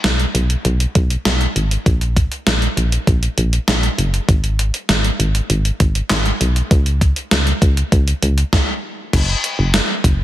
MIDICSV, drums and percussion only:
0, 0, Header, 1, 2, 480
1, 0, Start_track
1, 0, Tempo, 606061
1, 1475, Time_signature, 4, 2, 24, 8
1, 8109, End_track
2, 0, Start_track
2, 0, Title_t, "Drums"
2, 32, Note_on_c, 9, 38, 102
2, 36, Note_on_c, 9, 42, 79
2, 111, Note_off_c, 9, 38, 0
2, 115, Note_off_c, 9, 42, 0
2, 155, Note_on_c, 9, 42, 50
2, 234, Note_off_c, 9, 42, 0
2, 276, Note_on_c, 9, 42, 80
2, 355, Note_off_c, 9, 42, 0
2, 395, Note_on_c, 9, 42, 61
2, 474, Note_off_c, 9, 42, 0
2, 514, Note_on_c, 9, 42, 71
2, 593, Note_off_c, 9, 42, 0
2, 635, Note_on_c, 9, 42, 54
2, 715, Note_off_c, 9, 42, 0
2, 754, Note_on_c, 9, 42, 75
2, 756, Note_on_c, 9, 36, 86
2, 834, Note_off_c, 9, 42, 0
2, 835, Note_off_c, 9, 36, 0
2, 875, Note_on_c, 9, 42, 54
2, 954, Note_off_c, 9, 42, 0
2, 993, Note_on_c, 9, 38, 112
2, 996, Note_on_c, 9, 42, 74
2, 1072, Note_off_c, 9, 38, 0
2, 1075, Note_off_c, 9, 42, 0
2, 1115, Note_on_c, 9, 42, 50
2, 1194, Note_off_c, 9, 42, 0
2, 1235, Note_on_c, 9, 42, 75
2, 1315, Note_off_c, 9, 42, 0
2, 1357, Note_on_c, 9, 42, 52
2, 1436, Note_off_c, 9, 42, 0
2, 1474, Note_on_c, 9, 36, 113
2, 1475, Note_on_c, 9, 42, 76
2, 1554, Note_off_c, 9, 36, 0
2, 1555, Note_off_c, 9, 42, 0
2, 1594, Note_on_c, 9, 42, 52
2, 1674, Note_off_c, 9, 42, 0
2, 1715, Note_on_c, 9, 36, 92
2, 1717, Note_on_c, 9, 42, 83
2, 1794, Note_off_c, 9, 36, 0
2, 1796, Note_off_c, 9, 42, 0
2, 1834, Note_on_c, 9, 42, 53
2, 1913, Note_off_c, 9, 42, 0
2, 1953, Note_on_c, 9, 38, 103
2, 1957, Note_on_c, 9, 42, 78
2, 2032, Note_off_c, 9, 38, 0
2, 2036, Note_off_c, 9, 42, 0
2, 2076, Note_on_c, 9, 42, 51
2, 2155, Note_off_c, 9, 42, 0
2, 2196, Note_on_c, 9, 42, 79
2, 2276, Note_off_c, 9, 42, 0
2, 2316, Note_on_c, 9, 42, 60
2, 2395, Note_off_c, 9, 42, 0
2, 2434, Note_on_c, 9, 36, 85
2, 2434, Note_on_c, 9, 42, 73
2, 2513, Note_off_c, 9, 36, 0
2, 2514, Note_off_c, 9, 42, 0
2, 2556, Note_on_c, 9, 42, 54
2, 2635, Note_off_c, 9, 42, 0
2, 2674, Note_on_c, 9, 42, 78
2, 2753, Note_off_c, 9, 42, 0
2, 2795, Note_on_c, 9, 42, 55
2, 2874, Note_off_c, 9, 42, 0
2, 2913, Note_on_c, 9, 38, 121
2, 2915, Note_on_c, 9, 42, 75
2, 2992, Note_off_c, 9, 38, 0
2, 2995, Note_off_c, 9, 42, 0
2, 3036, Note_on_c, 9, 42, 50
2, 3115, Note_off_c, 9, 42, 0
2, 3156, Note_on_c, 9, 42, 76
2, 3235, Note_off_c, 9, 42, 0
2, 3277, Note_on_c, 9, 42, 51
2, 3356, Note_off_c, 9, 42, 0
2, 3394, Note_on_c, 9, 36, 116
2, 3395, Note_on_c, 9, 42, 77
2, 3473, Note_off_c, 9, 36, 0
2, 3474, Note_off_c, 9, 42, 0
2, 3514, Note_on_c, 9, 42, 51
2, 3593, Note_off_c, 9, 42, 0
2, 3637, Note_on_c, 9, 42, 80
2, 3716, Note_off_c, 9, 42, 0
2, 3754, Note_on_c, 9, 42, 56
2, 3833, Note_off_c, 9, 42, 0
2, 3873, Note_on_c, 9, 38, 99
2, 3876, Note_on_c, 9, 42, 81
2, 3952, Note_off_c, 9, 38, 0
2, 3955, Note_off_c, 9, 42, 0
2, 3995, Note_on_c, 9, 42, 51
2, 4075, Note_off_c, 9, 42, 0
2, 4116, Note_on_c, 9, 42, 79
2, 4196, Note_off_c, 9, 42, 0
2, 4236, Note_on_c, 9, 42, 61
2, 4315, Note_off_c, 9, 42, 0
2, 4354, Note_on_c, 9, 42, 72
2, 4434, Note_off_c, 9, 42, 0
2, 4476, Note_on_c, 9, 42, 55
2, 4555, Note_off_c, 9, 42, 0
2, 4594, Note_on_c, 9, 42, 80
2, 4596, Note_on_c, 9, 36, 86
2, 4673, Note_off_c, 9, 42, 0
2, 4675, Note_off_c, 9, 36, 0
2, 4714, Note_on_c, 9, 42, 56
2, 4794, Note_off_c, 9, 42, 0
2, 4832, Note_on_c, 9, 38, 121
2, 4832, Note_on_c, 9, 39, 98
2, 4835, Note_on_c, 9, 42, 74
2, 4911, Note_off_c, 9, 38, 0
2, 4911, Note_off_c, 9, 39, 0
2, 4914, Note_off_c, 9, 42, 0
2, 4955, Note_on_c, 9, 42, 49
2, 5034, Note_off_c, 9, 42, 0
2, 5075, Note_on_c, 9, 42, 77
2, 5154, Note_off_c, 9, 42, 0
2, 5196, Note_on_c, 9, 42, 51
2, 5275, Note_off_c, 9, 42, 0
2, 5314, Note_on_c, 9, 36, 117
2, 5315, Note_on_c, 9, 42, 76
2, 5393, Note_off_c, 9, 36, 0
2, 5394, Note_off_c, 9, 42, 0
2, 5434, Note_on_c, 9, 42, 51
2, 5513, Note_off_c, 9, 42, 0
2, 5555, Note_on_c, 9, 36, 91
2, 5556, Note_on_c, 9, 42, 81
2, 5634, Note_off_c, 9, 36, 0
2, 5635, Note_off_c, 9, 42, 0
2, 5673, Note_on_c, 9, 42, 56
2, 5752, Note_off_c, 9, 42, 0
2, 5792, Note_on_c, 9, 38, 104
2, 5796, Note_on_c, 9, 42, 82
2, 5871, Note_off_c, 9, 38, 0
2, 5875, Note_off_c, 9, 42, 0
2, 5915, Note_on_c, 9, 42, 52
2, 5994, Note_off_c, 9, 42, 0
2, 6034, Note_on_c, 9, 36, 98
2, 6036, Note_on_c, 9, 42, 82
2, 6113, Note_off_c, 9, 36, 0
2, 6116, Note_off_c, 9, 42, 0
2, 6156, Note_on_c, 9, 42, 63
2, 6235, Note_off_c, 9, 42, 0
2, 6274, Note_on_c, 9, 36, 91
2, 6274, Note_on_c, 9, 42, 76
2, 6353, Note_off_c, 9, 36, 0
2, 6354, Note_off_c, 9, 42, 0
2, 6396, Note_on_c, 9, 42, 55
2, 6475, Note_off_c, 9, 42, 0
2, 6514, Note_on_c, 9, 42, 79
2, 6593, Note_off_c, 9, 42, 0
2, 6634, Note_on_c, 9, 42, 56
2, 6713, Note_off_c, 9, 42, 0
2, 6754, Note_on_c, 9, 36, 105
2, 6754, Note_on_c, 9, 38, 90
2, 6833, Note_off_c, 9, 38, 0
2, 6834, Note_off_c, 9, 36, 0
2, 7234, Note_on_c, 9, 36, 121
2, 7234, Note_on_c, 9, 42, 79
2, 7234, Note_on_c, 9, 49, 101
2, 7313, Note_off_c, 9, 36, 0
2, 7313, Note_off_c, 9, 49, 0
2, 7314, Note_off_c, 9, 42, 0
2, 7476, Note_on_c, 9, 42, 83
2, 7556, Note_off_c, 9, 42, 0
2, 7712, Note_on_c, 9, 38, 106
2, 7716, Note_on_c, 9, 42, 85
2, 7792, Note_off_c, 9, 38, 0
2, 7795, Note_off_c, 9, 42, 0
2, 7953, Note_on_c, 9, 36, 100
2, 7956, Note_on_c, 9, 42, 87
2, 8033, Note_off_c, 9, 36, 0
2, 8035, Note_off_c, 9, 42, 0
2, 8109, End_track
0, 0, End_of_file